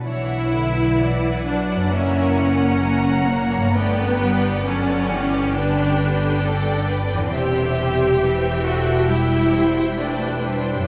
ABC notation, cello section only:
X:1
M:4/4
L:1/8
Q:1/4=66
K:Bm
V:1 name="Cello section" clef=bass
E, D, E, F, ^A,2 A,2 | A, G, F, E, D,4 | =C,2 E,2 G,2 A, G, |]